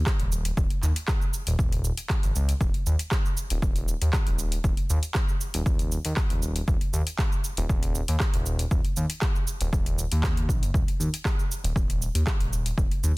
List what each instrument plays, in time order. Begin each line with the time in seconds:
0.06 kick, cross-stick, clap, cabasa
0.20 analog synth bass D#1, closed hi-hat
0.32 cabasa
0.45 closed hi-hat, cabasa
0.57 analog synth bass D#1, kick, cabasa
0.70 closed hi-hat
0.83 analog synth bass D#2, clap, cabasa
0.96 closed hi-hat, cabasa
1.08 kick, cross-stick, clap, cabasa
1.22 cabasa
1.34 cabasa
1.47 analog synth bass D#1, closed hi-hat, cabasa
1.59 analog synth bass D#1, kick, cabasa
1.72 closed hi-hat, cabasa
1.84 cabasa
1.97 closed hi-hat, cabasa
2.10 kick, cross-stick, clap, cabasa
2.23 analog synth bass G#1, closed hi-hat, cabasa
2.35 analog synth bass C#2, cabasa
2.49 closed hi-hat, cabasa
2.61 analog synth bass D#1, kick, cabasa
2.74 closed hi-hat
2.87 analog synth bass D#2, cabasa
2.99 closed hi-hat, cabasa
3.11 kick, cross-stick, clap, cabasa
3.25 cabasa
3.37 cabasa
3.50 analog synth bass D#1, closed hi-hat, cabasa
3.62 analog synth bass D#1, kick, cabasa
3.76 closed hi-hat, cabasa
3.88 cabasa
4.02 analog synth bass D#2, closed hi-hat, cabasa
4.13 kick, cross-stick, clap, cabasa
4.27 analog synth bass D#1, closed hi-hat
4.39 cabasa
4.52 closed hi-hat, cabasa
4.64 analog synth bass D#1, kick, cabasa
4.77 closed hi-hat
4.90 analog synth bass D#2, cabasa
5.03 closed hi-hat, cabasa
5.15 kick, cross-stick, clap, cabasa
5.29 cabasa
5.41 cabasa
5.54 analog synth bass D#1, closed hi-hat, cabasa
5.66 analog synth bass D#1, kick, cabasa
5.79 closed hi-hat, cabasa
5.92 cabasa
6.05 analog synth bass D#2, closed hi-hat, cabasa
6.17 kick, cross-stick, clap, cabasa
6.30 analog synth bass D#1, closed hi-hat
6.42 cabasa
6.56 closed hi-hat, cabasa
6.68 analog synth bass D#1, kick, cabasa
6.81 closed hi-hat
6.93 analog synth bass D#2, cabasa
7.07 closed hi-hat, cabasa
7.19 kick, cross-stick, clap, cabasa
7.32 cabasa
7.44 cabasa
7.57 analog synth bass D#1, closed hi-hat, cabasa
7.69 analog synth bass D#1, kick, cabasa
7.83 closed hi-hat, cabasa
7.95 cabasa
8.08 analog synth bass D#2, closed hi-hat, cabasa
8.20 kick, cross-stick, clap, cabasa
8.34 analog synth bass D#1, closed hi-hat
8.46 cabasa
8.59 closed hi-hat, cabasa
8.71 analog synth bass D#1, kick, cabasa
8.85 closed hi-hat
8.97 analog synth bass D#2, cabasa
9.10 closed hi-hat, cabasa
9.22 kick, cross-stick, clap, cabasa
9.36 cabasa
9.47 cabasa
9.61 analog synth bass D#1, closed hi-hat, cabasa
9.73 analog synth bass D#1, kick, cabasa
9.86 closed hi-hat, cabasa
9.99 cabasa
10.12 analog synth bass D#2, closed hi-hat, cabasa
10.23 kick, cross-stick, clap, cabasa
10.37 closed hi-hat
10.49 analog synth bass A#1, kick, cabasa
10.62 analog synth bass F#1, closed hi-hat, cabasa
10.74 analog synth bass D#1, kick, cabasa
10.88 closed hi-hat
11.00 analog synth bass D#2, cabasa
11.14 closed hi-hat, cabasa
11.25 kick, cross-stick, clap, cabasa
11.39 cabasa
11.51 cabasa
11.64 analog synth bass D#1, closed hi-hat, cabasa
11.76 analog synth bass D#1, kick, cabasa
11.90 closed hi-hat, cabasa
12.02 cabasa
12.15 analog synth bass D#2, closed hi-hat, cabasa
12.27 kick, cross-stick, clap, cabasa
12.40 analog synth bass D#1, closed hi-hat
12.53 cabasa
12.66 closed hi-hat, cabasa
12.78 analog synth bass D#1, kick, cabasa
12.91 closed hi-hat
13.03 analog synth bass D#2, cabasa